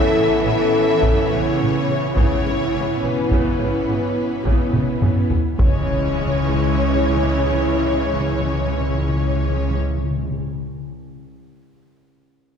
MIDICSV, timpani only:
0, 0, Header, 1, 2, 480
1, 0, Start_track
1, 0, Key_signature, 4, "minor"
1, 0, Tempo, 570885
1, 1818, Time_signature, 12, 3, 24, 8
1, 10572, End_track
2, 0, Start_track
2, 0, Title_t, "Timpani"
2, 0, Program_c, 0, 47
2, 1817, Note_on_c, 0, 44, 64
2, 2503, Note_off_c, 0, 44, 0
2, 4696, Note_on_c, 0, 49, 54
2, 4753, Note_off_c, 0, 49, 0
2, 4756, Note_on_c, 0, 49, 46
2, 4812, Note_off_c, 0, 49, 0
2, 4812, Note_on_c, 0, 49, 53
2, 4870, Note_off_c, 0, 49, 0
2, 4874, Note_on_c, 0, 49, 49
2, 4930, Note_off_c, 0, 49, 0
2, 4930, Note_on_c, 0, 49, 50
2, 4987, Note_off_c, 0, 49, 0
2, 4990, Note_on_c, 0, 49, 54
2, 5047, Note_off_c, 0, 49, 0
2, 5051, Note_on_c, 0, 49, 49
2, 5106, Note_off_c, 0, 49, 0
2, 5106, Note_on_c, 0, 49, 50
2, 5163, Note_off_c, 0, 49, 0
2, 5163, Note_on_c, 0, 49, 50
2, 5219, Note_off_c, 0, 49, 0
2, 5219, Note_on_c, 0, 49, 45
2, 5273, Note_off_c, 0, 49, 0
2, 5273, Note_on_c, 0, 49, 54
2, 5330, Note_off_c, 0, 49, 0
2, 5334, Note_on_c, 0, 49, 46
2, 5387, Note_off_c, 0, 49, 0
2, 5387, Note_on_c, 0, 49, 51
2, 5443, Note_off_c, 0, 49, 0
2, 5443, Note_on_c, 0, 49, 51
2, 5497, Note_off_c, 0, 49, 0
2, 5497, Note_on_c, 0, 49, 55
2, 5552, Note_off_c, 0, 49, 0
2, 5552, Note_on_c, 0, 49, 51
2, 5610, Note_off_c, 0, 49, 0
2, 5613, Note_on_c, 0, 49, 58
2, 5671, Note_off_c, 0, 49, 0
2, 5674, Note_on_c, 0, 49, 47
2, 5732, Note_off_c, 0, 49, 0
2, 5794, Note_on_c, 0, 49, 44
2, 5845, Note_off_c, 0, 49, 0
2, 5845, Note_on_c, 0, 49, 52
2, 5901, Note_off_c, 0, 49, 0
2, 5901, Note_on_c, 0, 49, 48
2, 5959, Note_off_c, 0, 49, 0
2, 5962, Note_on_c, 0, 49, 49
2, 6020, Note_off_c, 0, 49, 0
2, 6023, Note_on_c, 0, 49, 50
2, 6081, Note_off_c, 0, 49, 0
2, 6081, Note_on_c, 0, 49, 51
2, 6139, Note_off_c, 0, 49, 0
2, 6145, Note_on_c, 0, 49, 49
2, 6202, Note_off_c, 0, 49, 0
2, 6203, Note_on_c, 0, 49, 51
2, 6259, Note_off_c, 0, 49, 0
2, 6259, Note_on_c, 0, 49, 50
2, 6317, Note_off_c, 0, 49, 0
2, 6317, Note_on_c, 0, 49, 53
2, 6372, Note_off_c, 0, 49, 0
2, 6372, Note_on_c, 0, 49, 47
2, 6427, Note_off_c, 0, 49, 0
2, 6427, Note_on_c, 0, 49, 49
2, 6483, Note_off_c, 0, 49, 0
2, 6483, Note_on_c, 0, 49, 50
2, 6540, Note_off_c, 0, 49, 0
2, 6540, Note_on_c, 0, 49, 54
2, 6598, Note_off_c, 0, 49, 0
2, 6599, Note_on_c, 0, 49, 50
2, 6657, Note_off_c, 0, 49, 0
2, 6665, Note_on_c, 0, 49, 52
2, 6722, Note_off_c, 0, 49, 0
2, 6722, Note_on_c, 0, 49, 49
2, 6776, Note_off_c, 0, 49, 0
2, 6776, Note_on_c, 0, 49, 53
2, 6833, Note_off_c, 0, 49, 0
2, 6833, Note_on_c, 0, 49, 56
2, 6891, Note_off_c, 0, 49, 0
2, 6895, Note_on_c, 0, 49, 50
2, 6950, Note_off_c, 0, 49, 0
2, 6950, Note_on_c, 0, 49, 48
2, 7006, Note_off_c, 0, 49, 0
2, 7006, Note_on_c, 0, 49, 53
2, 7063, Note_off_c, 0, 49, 0
2, 7063, Note_on_c, 0, 49, 53
2, 7119, Note_off_c, 0, 49, 0
2, 7119, Note_on_c, 0, 49, 50
2, 7174, Note_off_c, 0, 49, 0
2, 7174, Note_on_c, 0, 49, 45
2, 7231, Note_off_c, 0, 49, 0
2, 7231, Note_on_c, 0, 49, 59
2, 7289, Note_off_c, 0, 49, 0
2, 7292, Note_on_c, 0, 49, 48
2, 7349, Note_off_c, 0, 49, 0
2, 7350, Note_on_c, 0, 49, 49
2, 7404, Note_off_c, 0, 49, 0
2, 7404, Note_on_c, 0, 49, 51
2, 7461, Note_off_c, 0, 49, 0
2, 7463, Note_on_c, 0, 49, 49
2, 7519, Note_off_c, 0, 49, 0
2, 7519, Note_on_c, 0, 49, 49
2, 7577, Note_off_c, 0, 49, 0
2, 7580, Note_on_c, 0, 49, 51
2, 7638, Note_off_c, 0, 49, 0
2, 7640, Note_on_c, 0, 49, 50
2, 7698, Note_off_c, 0, 49, 0
2, 7701, Note_on_c, 0, 49, 53
2, 7757, Note_off_c, 0, 49, 0
2, 7757, Note_on_c, 0, 49, 47
2, 7815, Note_off_c, 0, 49, 0
2, 7818, Note_on_c, 0, 49, 53
2, 7872, Note_off_c, 0, 49, 0
2, 7872, Note_on_c, 0, 49, 49
2, 7929, Note_off_c, 0, 49, 0
2, 7929, Note_on_c, 0, 49, 56
2, 7986, Note_off_c, 0, 49, 0
2, 7986, Note_on_c, 0, 49, 52
2, 8043, Note_off_c, 0, 49, 0
2, 8043, Note_on_c, 0, 49, 54
2, 8100, Note_off_c, 0, 49, 0
2, 8100, Note_on_c, 0, 49, 47
2, 8157, Note_off_c, 0, 49, 0
2, 8160, Note_on_c, 0, 49, 57
2, 8216, Note_off_c, 0, 49, 0
2, 8216, Note_on_c, 0, 49, 51
2, 8272, Note_off_c, 0, 49, 0
2, 8272, Note_on_c, 0, 49, 50
2, 8328, Note_off_c, 0, 49, 0
2, 8328, Note_on_c, 0, 49, 50
2, 8384, Note_off_c, 0, 49, 0
2, 8384, Note_on_c, 0, 49, 49
2, 8439, Note_off_c, 0, 49, 0
2, 8439, Note_on_c, 0, 49, 50
2, 8496, Note_off_c, 0, 49, 0
2, 8498, Note_on_c, 0, 49, 52
2, 8550, Note_off_c, 0, 49, 0
2, 8550, Note_on_c, 0, 49, 49
2, 8604, Note_off_c, 0, 49, 0
2, 8604, Note_on_c, 0, 49, 55
2, 8661, Note_off_c, 0, 49, 0
2, 8662, Note_on_c, 0, 49, 51
2, 8720, Note_off_c, 0, 49, 0
2, 8721, Note_on_c, 0, 49, 49
2, 8779, Note_off_c, 0, 49, 0
2, 10572, End_track
0, 0, End_of_file